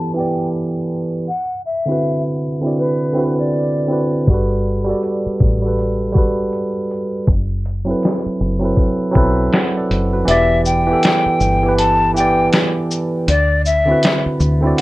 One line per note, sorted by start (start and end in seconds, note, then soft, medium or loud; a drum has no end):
0.00 0.14 E3 medium
0.00 0.16 B3 medium
0.00 1.29 F#4 medium
0.00 0.18 G4 medium
0.00 1.29 A4 medium
0.00 1.29 B4 medium
0.00 0.20 D5 loud
0.00 0.12 A5 medium
0.14 1.27 E3 medium
0.14 1.28 B3 medium
0.14 1.29 G4 medium
0.14 0.49 G5 medium
0.20 1.30 D5 medium
1.28 1.62 F#5 medium
1.66 2.22 E5 medium
1.86 2.45 D3 medium
1.86 2.45 C4 medium
1.86 2.46 E4 medium
1.90 2.47 F#4 medium
1.90 2.48 B4 medium
2.61 3.06 D3 medium
2.61 3.07 C4 medium
2.61 3.07 E4 medium
2.65 3.08 F#4 medium
2.65 3.09 D5 medium
2.78 3.34 B4 medium
3.13 3.78 D3 medium
3.13 3.79 C4 medium
3.13 3.79 E4 medium
3.17 3.80 F#4 medium
3.17 3.81 B4 medium
3.38 4.24 D5 medium
3.86 4.20 D3 medium
3.86 4.21 C4 medium
3.86 4.22 E4 medium
3.91 4.22 F#4 medium
3.91 4.23 B4 medium
4.28 4.93 G1 medium
4.28 4.75 G3 loud
4.28 4.76 F#4 medium
4.28 kick loud
4.28 closed hi-hat medium
4.32 4.77 A4 medium
4.32 4.78 B4 loud
4.84 5.44 G3 medium
4.84 5.45 F#4 medium
4.84 5.46 A4 medium
4.90 5.47 D5 medium
5.03 closed hi-hat medium
5.26 muted fingered electric bass stroke soft
5.40 6.49 A1 medium
5.40 kick medium
5.62 6.06 G3 medium
5.62 6.07 F#4 medium
5.62 6.08 A4 medium
5.68 6.09 B4 medium
5.79 closed hi-hat medium
6.12 7.26 G3 medium
6.12 7.27 F#4 medium
6.12 7.28 A4 medium
6.12 kick medium
6.18 7.29 B4 medium
6.53 closed hi-hat medium
6.91 closed hi-hat medium
7.27 7.92 F#1 loud
7.27 kick medium
7.27 closed hi-hat medium
7.65 closed hi-hat soft
7.85 8.44 F#3 medium
7.85 8.45 C4 medium
7.85 8.46 E4 medium
7.89 8.46 A4 medium
7.89 8.47 B4 medium
8.03 snare loud
8.03 closed hi-hat medium
8.26 muted fingered electric bass stroke soft
8.40 8.73 F#1 medium
8.59 9.05 F#3 medium
8.59 9.06 C4 medium
8.59 9.06 E4 medium
8.64 9.07 A4 medium
8.64 9.08 B4 medium
8.77 kick medium
8.77 closed hi-hat medium
9.11 9.77 F#3 medium
9.11 9.78 C4 medium
9.11 9.79 E4 medium
9.11 kick medium
9.16 9.48 B1 medium
9.16 9.53 A4 medium
9.16 9.54 B4 medium
9.53 9.75 C5 soft
9.53 9.75 F#5 medium
9.53 snare loud
9.53 closed hi-hat medium
9.77 10.12 A4 medium
9.77 10.12 D5 medium
9.91 10.23 F#1 medium
9.91 closed hi-hat soft
10.13 10.49 F#4 soft
10.13 10.49 B4 medium
10.25 10.93 E1 loud
10.25 10.74 E3 loud
10.25 10.75 B3 medium
10.25 10.76 G4 medium
10.25 10.62 E5 loud
10.25 closed hi-hat medium
10.31 10.77 D5 loud
10.65 11.74 G5 medium
10.65 shaker soft
10.87 11.45 E3 medium
10.87 11.46 B3 medium
10.91 11.47 G4 medium
10.91 11.48 A4 medium
11.03 snare loud
11.03 closed hi-hat medium
11.26 muted fingered electric bass stroke soft
11.40 12.49 G1 medium
11.40 shaker soft
11.62 12.07 E3 medium
11.62 12.08 B3 medium
11.62 12.08 G4 medium
11.68 12.10 B4 medium
11.78 12.11 A5 medium
11.78 closed hi-hat medium
12.14 13.27 E3 medium
12.14 13.28 B3 medium
12.14 13.29 G4 medium
12.14 12.49 G5 medium
12.14 shaker soft
12.20 13.30 D5 medium
12.53 snare loud
12.53 closed hi-hat medium
12.91 shaker medium
13.28 13.93 D2 loud
13.28 13.62 D5 medium
13.28 closed hi-hat medium
13.65 14.22 E5 medium
13.65 shaker soft
13.85 14.45 D3 medium
13.85 14.45 C4 medium
13.85 14.46 E4 medium
13.90 14.47 F#4 medium
13.90 14.48 B4 medium
14.03 snare loud
14.03 closed hi-hat medium
14.26 muted fingered electric bass stroke soft
14.40 14.73 D2 loud
14.40 shaker soft
14.61 14.81 D3 medium
14.61 14.81 C4 medium
14.61 14.81 E4 medium
14.65 14.81 F#4 medium
14.65 14.81 D5 medium
14.78 14.81 F#5 medium